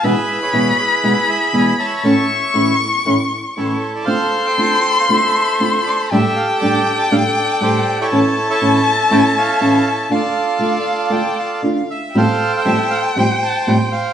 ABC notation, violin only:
X:1
M:4/4
L:1/8
Q:1/4=119
K:Dm
V:1 name="Violin"
=b8 | ^c'6- c' z | c'8 | g8 |
a8 | f4 g f2 z | [K:F] g8 |]